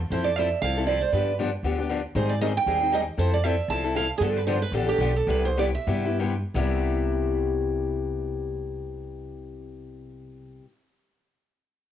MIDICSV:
0, 0, Header, 1, 4, 480
1, 0, Start_track
1, 0, Key_signature, 0, "major"
1, 0, Tempo, 256301
1, 202, Time_signature, 4, 2, 24, 8
1, 8361, Tempo, 274977
1, 10281, Tempo, 328048
1, 11721, Tempo, 365408
1, 18764, End_track
2, 0, Start_track
2, 0, Title_t, "Steel-string acoustic guitar"
2, 0, Program_c, 0, 25
2, 217, Note_on_c, 0, 72, 73
2, 454, Note_on_c, 0, 74, 77
2, 482, Note_off_c, 0, 72, 0
2, 673, Note_off_c, 0, 74, 0
2, 673, Note_on_c, 0, 76, 88
2, 1147, Note_off_c, 0, 76, 0
2, 1155, Note_on_c, 0, 77, 97
2, 1618, Note_off_c, 0, 77, 0
2, 1625, Note_on_c, 0, 74, 84
2, 1880, Note_off_c, 0, 74, 0
2, 1898, Note_on_c, 0, 72, 76
2, 2099, Note_off_c, 0, 72, 0
2, 2107, Note_on_c, 0, 71, 64
2, 2561, Note_off_c, 0, 71, 0
2, 4051, Note_on_c, 0, 72, 82
2, 4294, Note_off_c, 0, 72, 0
2, 4300, Note_on_c, 0, 74, 78
2, 4516, Note_off_c, 0, 74, 0
2, 4523, Note_on_c, 0, 75, 85
2, 4617, Note_off_c, 0, 75, 0
2, 4818, Note_on_c, 0, 79, 90
2, 5517, Note_off_c, 0, 79, 0
2, 5517, Note_on_c, 0, 75, 84
2, 5610, Note_off_c, 0, 75, 0
2, 5980, Note_on_c, 0, 72, 85
2, 6240, Note_off_c, 0, 72, 0
2, 6247, Note_on_c, 0, 74, 83
2, 6437, Note_off_c, 0, 74, 0
2, 6437, Note_on_c, 0, 76, 90
2, 6930, Note_on_c, 0, 81, 94
2, 6933, Note_off_c, 0, 76, 0
2, 7416, Note_off_c, 0, 81, 0
2, 7423, Note_on_c, 0, 77, 91
2, 7659, Note_off_c, 0, 77, 0
2, 7825, Note_on_c, 0, 68, 71
2, 7879, Note_off_c, 0, 68, 0
2, 7894, Note_on_c, 0, 69, 83
2, 7988, Note_off_c, 0, 69, 0
2, 8172, Note_on_c, 0, 71, 75
2, 8360, Note_off_c, 0, 71, 0
2, 8367, Note_on_c, 0, 72, 85
2, 8597, Note_off_c, 0, 72, 0
2, 8633, Note_on_c, 0, 71, 79
2, 8828, Note_off_c, 0, 71, 0
2, 8828, Note_on_c, 0, 69, 84
2, 9088, Note_off_c, 0, 69, 0
2, 9098, Note_on_c, 0, 67, 86
2, 9532, Note_off_c, 0, 67, 0
2, 9580, Note_on_c, 0, 69, 76
2, 9772, Note_off_c, 0, 69, 0
2, 9812, Note_on_c, 0, 71, 77
2, 10075, Note_off_c, 0, 71, 0
2, 10082, Note_on_c, 0, 72, 78
2, 10281, Note_off_c, 0, 72, 0
2, 10319, Note_on_c, 0, 74, 87
2, 10392, Note_off_c, 0, 74, 0
2, 10546, Note_on_c, 0, 76, 72
2, 11170, Note_off_c, 0, 76, 0
2, 11735, Note_on_c, 0, 76, 71
2, 17061, Note_off_c, 0, 76, 0
2, 18764, End_track
3, 0, Start_track
3, 0, Title_t, "Steel-string acoustic guitar"
3, 0, Program_c, 1, 25
3, 222, Note_on_c, 1, 53, 60
3, 226, Note_on_c, 1, 60, 63
3, 243, Note_on_c, 1, 64, 68
3, 247, Note_on_c, 1, 69, 68
3, 549, Note_off_c, 1, 53, 0
3, 551, Note_off_c, 1, 60, 0
3, 559, Note_off_c, 1, 64, 0
3, 561, Note_off_c, 1, 69, 0
3, 714, Note_on_c, 1, 53, 78
3, 721, Note_on_c, 1, 60, 85
3, 730, Note_on_c, 1, 64, 84
3, 735, Note_on_c, 1, 69, 91
3, 885, Note_off_c, 1, 53, 0
3, 889, Note_off_c, 1, 60, 0
3, 893, Note_off_c, 1, 64, 0
3, 895, Note_off_c, 1, 69, 0
3, 1185, Note_on_c, 1, 53, 57
3, 1197, Note_on_c, 1, 60, 62
3, 1201, Note_on_c, 1, 64, 73
3, 1209, Note_on_c, 1, 69, 69
3, 1426, Note_off_c, 1, 69, 0
3, 1428, Note_off_c, 1, 53, 0
3, 1434, Note_off_c, 1, 60, 0
3, 1436, Note_off_c, 1, 64, 0
3, 1448, Note_on_c, 1, 69, 59
3, 1474, Note_on_c, 1, 64, 52
3, 1494, Note_on_c, 1, 60, 46
3, 1641, Note_off_c, 1, 60, 0
3, 1642, Note_off_c, 1, 64, 0
3, 1644, Note_off_c, 1, 69, 0
3, 1644, Note_on_c, 1, 53, 81
3, 1663, Note_on_c, 1, 60, 86
3, 1665, Note_on_c, 1, 64, 85
3, 1674, Note_on_c, 1, 69, 90
3, 1830, Note_off_c, 1, 53, 0
3, 1840, Note_off_c, 1, 60, 0
3, 1841, Note_off_c, 1, 64, 0
3, 1845, Note_off_c, 1, 69, 0
3, 2127, Note_on_c, 1, 50, 55
3, 2130, Note_on_c, 1, 59, 60
3, 2133, Note_on_c, 1, 53, 57
3, 2144, Note_on_c, 1, 62, 65
3, 2145, Note_on_c, 1, 67, 61
3, 2462, Note_off_c, 1, 50, 0
3, 2463, Note_off_c, 1, 59, 0
3, 2464, Note_off_c, 1, 53, 0
3, 2470, Note_off_c, 1, 62, 0
3, 2470, Note_off_c, 1, 67, 0
3, 2603, Note_on_c, 1, 53, 73
3, 2605, Note_on_c, 1, 50, 71
3, 2620, Note_on_c, 1, 59, 83
3, 2620, Note_on_c, 1, 62, 90
3, 2629, Note_on_c, 1, 67, 87
3, 2790, Note_off_c, 1, 53, 0
3, 2791, Note_off_c, 1, 50, 0
3, 2799, Note_off_c, 1, 59, 0
3, 2799, Note_off_c, 1, 62, 0
3, 2803, Note_off_c, 1, 67, 0
3, 3077, Note_on_c, 1, 50, 64
3, 3083, Note_on_c, 1, 53, 67
3, 3090, Note_on_c, 1, 62, 65
3, 3094, Note_on_c, 1, 59, 65
3, 3105, Note_on_c, 1, 67, 66
3, 3323, Note_off_c, 1, 67, 0
3, 3335, Note_off_c, 1, 50, 0
3, 3338, Note_off_c, 1, 53, 0
3, 3341, Note_off_c, 1, 62, 0
3, 3343, Note_off_c, 1, 59, 0
3, 3345, Note_on_c, 1, 67, 57
3, 3361, Note_on_c, 1, 62, 47
3, 3375, Note_on_c, 1, 59, 47
3, 3530, Note_off_c, 1, 59, 0
3, 3540, Note_off_c, 1, 67, 0
3, 3542, Note_off_c, 1, 62, 0
3, 3544, Note_on_c, 1, 53, 77
3, 3550, Note_on_c, 1, 50, 71
3, 3552, Note_on_c, 1, 59, 76
3, 3563, Note_on_c, 1, 67, 83
3, 3565, Note_on_c, 1, 62, 80
3, 3741, Note_off_c, 1, 53, 0
3, 3744, Note_off_c, 1, 50, 0
3, 3744, Note_off_c, 1, 59, 0
3, 3750, Note_off_c, 1, 67, 0
3, 3751, Note_off_c, 1, 62, 0
3, 4027, Note_on_c, 1, 51, 63
3, 4032, Note_on_c, 1, 55, 61
3, 4042, Note_on_c, 1, 60, 62
3, 4043, Note_on_c, 1, 63, 68
3, 4050, Note_on_c, 1, 68, 71
3, 4371, Note_off_c, 1, 51, 0
3, 4374, Note_off_c, 1, 55, 0
3, 4379, Note_off_c, 1, 60, 0
3, 4379, Note_off_c, 1, 63, 0
3, 4383, Note_off_c, 1, 68, 0
3, 4521, Note_on_c, 1, 55, 78
3, 4522, Note_on_c, 1, 51, 79
3, 4523, Note_on_c, 1, 60, 89
3, 4532, Note_on_c, 1, 63, 87
3, 4544, Note_on_c, 1, 68, 86
3, 4708, Note_off_c, 1, 55, 0
3, 4709, Note_off_c, 1, 51, 0
3, 4710, Note_off_c, 1, 60, 0
3, 4714, Note_off_c, 1, 63, 0
3, 4720, Note_off_c, 1, 68, 0
3, 4998, Note_on_c, 1, 51, 60
3, 5005, Note_on_c, 1, 55, 60
3, 5011, Note_on_c, 1, 60, 70
3, 5015, Note_on_c, 1, 68, 68
3, 5016, Note_on_c, 1, 63, 68
3, 5234, Note_off_c, 1, 68, 0
3, 5254, Note_off_c, 1, 51, 0
3, 5257, Note_on_c, 1, 68, 54
3, 5258, Note_off_c, 1, 55, 0
3, 5259, Note_off_c, 1, 63, 0
3, 5261, Note_off_c, 1, 60, 0
3, 5282, Note_on_c, 1, 63, 52
3, 5291, Note_on_c, 1, 60, 48
3, 5449, Note_off_c, 1, 60, 0
3, 5459, Note_off_c, 1, 63, 0
3, 5459, Note_on_c, 1, 51, 75
3, 5467, Note_on_c, 1, 55, 83
3, 5468, Note_off_c, 1, 68, 0
3, 5472, Note_on_c, 1, 60, 74
3, 5482, Note_on_c, 1, 63, 85
3, 5487, Note_on_c, 1, 68, 77
3, 5657, Note_off_c, 1, 51, 0
3, 5661, Note_off_c, 1, 55, 0
3, 5664, Note_off_c, 1, 60, 0
3, 5669, Note_off_c, 1, 63, 0
3, 5671, Note_off_c, 1, 68, 0
3, 5941, Note_on_c, 1, 53, 55
3, 5954, Note_on_c, 1, 60, 67
3, 5958, Note_on_c, 1, 64, 64
3, 5966, Note_on_c, 1, 69, 66
3, 6287, Note_off_c, 1, 53, 0
3, 6294, Note_off_c, 1, 60, 0
3, 6296, Note_off_c, 1, 64, 0
3, 6300, Note_off_c, 1, 69, 0
3, 6450, Note_on_c, 1, 53, 79
3, 6455, Note_on_c, 1, 60, 87
3, 6460, Note_on_c, 1, 64, 83
3, 6471, Note_on_c, 1, 69, 81
3, 6632, Note_off_c, 1, 53, 0
3, 6635, Note_off_c, 1, 60, 0
3, 6637, Note_off_c, 1, 64, 0
3, 6642, Note_off_c, 1, 69, 0
3, 6930, Note_on_c, 1, 53, 62
3, 6943, Note_on_c, 1, 60, 69
3, 6952, Note_on_c, 1, 64, 71
3, 6960, Note_on_c, 1, 69, 69
3, 7173, Note_off_c, 1, 69, 0
3, 7179, Note_off_c, 1, 53, 0
3, 7186, Note_off_c, 1, 60, 0
3, 7191, Note_off_c, 1, 64, 0
3, 7195, Note_on_c, 1, 69, 54
3, 7214, Note_on_c, 1, 64, 55
3, 7222, Note_on_c, 1, 60, 44
3, 7396, Note_off_c, 1, 69, 0
3, 7401, Note_off_c, 1, 60, 0
3, 7401, Note_on_c, 1, 53, 74
3, 7406, Note_off_c, 1, 64, 0
3, 7423, Note_on_c, 1, 60, 72
3, 7425, Note_on_c, 1, 64, 86
3, 7435, Note_on_c, 1, 69, 83
3, 7587, Note_off_c, 1, 53, 0
3, 7598, Note_off_c, 1, 60, 0
3, 7599, Note_off_c, 1, 64, 0
3, 7604, Note_off_c, 1, 69, 0
3, 7880, Note_on_c, 1, 50, 64
3, 7887, Note_on_c, 1, 53, 59
3, 7892, Note_on_c, 1, 59, 63
3, 7892, Note_on_c, 1, 62, 74
3, 7896, Note_on_c, 1, 67, 67
3, 8217, Note_off_c, 1, 50, 0
3, 8220, Note_off_c, 1, 53, 0
3, 8223, Note_off_c, 1, 59, 0
3, 8223, Note_off_c, 1, 62, 0
3, 8225, Note_off_c, 1, 67, 0
3, 8380, Note_on_c, 1, 50, 90
3, 8381, Note_on_c, 1, 53, 94
3, 8390, Note_on_c, 1, 62, 81
3, 8391, Note_on_c, 1, 59, 83
3, 8395, Note_on_c, 1, 67, 91
3, 8547, Note_off_c, 1, 50, 0
3, 8548, Note_off_c, 1, 53, 0
3, 8552, Note_off_c, 1, 62, 0
3, 8553, Note_off_c, 1, 59, 0
3, 8555, Note_off_c, 1, 67, 0
3, 8831, Note_on_c, 1, 50, 62
3, 8840, Note_on_c, 1, 53, 61
3, 8845, Note_on_c, 1, 62, 72
3, 8848, Note_on_c, 1, 59, 65
3, 8851, Note_on_c, 1, 67, 70
3, 9043, Note_off_c, 1, 67, 0
3, 9063, Note_off_c, 1, 62, 0
3, 9064, Note_on_c, 1, 67, 55
3, 9071, Note_off_c, 1, 50, 0
3, 9076, Note_off_c, 1, 53, 0
3, 9080, Note_off_c, 1, 59, 0
3, 9084, Note_on_c, 1, 62, 52
3, 9102, Note_on_c, 1, 59, 49
3, 9272, Note_off_c, 1, 67, 0
3, 9282, Note_off_c, 1, 62, 0
3, 9292, Note_off_c, 1, 59, 0
3, 9298, Note_on_c, 1, 53, 85
3, 9299, Note_on_c, 1, 50, 73
3, 9307, Note_on_c, 1, 62, 84
3, 9309, Note_on_c, 1, 67, 79
3, 9312, Note_on_c, 1, 59, 80
3, 9479, Note_off_c, 1, 53, 0
3, 9480, Note_off_c, 1, 50, 0
3, 9484, Note_off_c, 1, 62, 0
3, 9485, Note_off_c, 1, 67, 0
3, 9486, Note_off_c, 1, 59, 0
3, 9777, Note_on_c, 1, 48, 63
3, 9782, Note_on_c, 1, 55, 66
3, 9784, Note_on_c, 1, 59, 62
3, 9786, Note_on_c, 1, 64, 67
3, 9794, Note_on_c, 1, 67, 65
3, 10128, Note_off_c, 1, 48, 0
3, 10131, Note_off_c, 1, 55, 0
3, 10131, Note_off_c, 1, 59, 0
3, 10133, Note_off_c, 1, 64, 0
3, 10137, Note_off_c, 1, 67, 0
3, 10293, Note_on_c, 1, 55, 79
3, 10296, Note_on_c, 1, 48, 73
3, 10301, Note_on_c, 1, 59, 85
3, 10308, Note_on_c, 1, 64, 92
3, 10314, Note_on_c, 1, 67, 83
3, 10458, Note_off_c, 1, 55, 0
3, 10460, Note_off_c, 1, 48, 0
3, 10462, Note_off_c, 1, 59, 0
3, 10466, Note_off_c, 1, 64, 0
3, 10469, Note_off_c, 1, 67, 0
3, 10730, Note_on_c, 1, 48, 61
3, 10732, Note_on_c, 1, 55, 67
3, 10732, Note_on_c, 1, 59, 70
3, 10740, Note_on_c, 1, 64, 69
3, 10744, Note_on_c, 1, 67, 70
3, 10972, Note_off_c, 1, 67, 0
3, 10979, Note_off_c, 1, 48, 0
3, 10980, Note_off_c, 1, 55, 0
3, 10980, Note_off_c, 1, 59, 0
3, 10984, Note_off_c, 1, 64, 0
3, 10989, Note_on_c, 1, 67, 58
3, 10999, Note_on_c, 1, 64, 50
3, 11020, Note_on_c, 1, 59, 45
3, 11198, Note_off_c, 1, 67, 0
3, 11201, Note_on_c, 1, 48, 88
3, 11203, Note_off_c, 1, 59, 0
3, 11203, Note_off_c, 1, 64, 0
3, 11206, Note_on_c, 1, 55, 78
3, 11220, Note_on_c, 1, 59, 81
3, 11220, Note_on_c, 1, 64, 88
3, 11222, Note_on_c, 1, 67, 83
3, 11399, Note_off_c, 1, 48, 0
3, 11402, Note_off_c, 1, 55, 0
3, 11408, Note_off_c, 1, 64, 0
3, 11409, Note_off_c, 1, 59, 0
3, 11409, Note_off_c, 1, 67, 0
3, 11722, Note_on_c, 1, 48, 81
3, 11735, Note_on_c, 1, 55, 79
3, 11735, Note_on_c, 1, 59, 82
3, 11749, Note_on_c, 1, 64, 81
3, 11761, Note_on_c, 1, 67, 79
3, 17101, Note_off_c, 1, 48, 0
3, 17114, Note_off_c, 1, 55, 0
3, 17114, Note_off_c, 1, 59, 0
3, 17128, Note_off_c, 1, 64, 0
3, 17139, Note_off_c, 1, 67, 0
3, 18764, End_track
4, 0, Start_track
4, 0, Title_t, "Upright bass"
4, 0, Program_c, 2, 32
4, 195, Note_on_c, 2, 41, 82
4, 966, Note_off_c, 2, 41, 0
4, 1153, Note_on_c, 2, 36, 81
4, 1925, Note_off_c, 2, 36, 0
4, 2112, Note_on_c, 2, 43, 84
4, 2884, Note_off_c, 2, 43, 0
4, 3053, Note_on_c, 2, 38, 77
4, 3833, Note_off_c, 2, 38, 0
4, 4028, Note_on_c, 2, 44, 86
4, 4802, Note_off_c, 2, 44, 0
4, 4988, Note_on_c, 2, 39, 78
4, 5761, Note_off_c, 2, 39, 0
4, 5949, Note_on_c, 2, 41, 83
4, 6721, Note_off_c, 2, 41, 0
4, 6898, Note_on_c, 2, 36, 77
4, 7674, Note_off_c, 2, 36, 0
4, 7868, Note_on_c, 2, 43, 85
4, 8630, Note_off_c, 2, 43, 0
4, 8801, Note_on_c, 2, 33, 79
4, 9207, Note_off_c, 2, 33, 0
4, 9267, Note_on_c, 2, 35, 84
4, 9688, Note_off_c, 2, 35, 0
4, 9761, Note_on_c, 2, 36, 90
4, 10548, Note_off_c, 2, 36, 0
4, 10725, Note_on_c, 2, 43, 78
4, 11520, Note_off_c, 2, 43, 0
4, 11712, Note_on_c, 2, 36, 88
4, 17039, Note_off_c, 2, 36, 0
4, 18764, End_track
0, 0, End_of_file